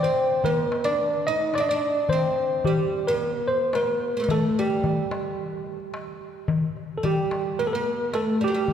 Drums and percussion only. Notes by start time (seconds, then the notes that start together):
0.17 darbuka ka
0.44 darbuka dum
0.72 darbuka tek
1.13 darbuka ka
1.26 darbuka ka
1.40 darbuka ka
1.54 darbuka tek
1.68 darbuka ka
1.82 darbuka ka
2.09 darbuka dum
2.37 darbuka ka
2.64 darbuka dum
3.34 darbuka ka
3.47 darbuka ka
3.60 darbuka ka
3.73 darbuka tek
3.87 darbuka ka
4.01 darbuka ka
4.28 darbuka dum
4.56 darbuka ka
4.84 darbuka dum
5.11 darbuka tek
5.39 darbuka ka
5.53 darbuka ka
5.67 darbuka ka
5.80 darbuka ka
5.94 darbuka tek
6.07 darbuka ka
6.21 darbuka ka
6.48 darbuka dum
6.77 darbuka ka
7.04 darbuka dum
7.31 darbuka tek
7.86 darbuka ka
8.13 darbuka tek
8.27 darbuka ka
8.41 darbuka ka
8.68 darbuka dum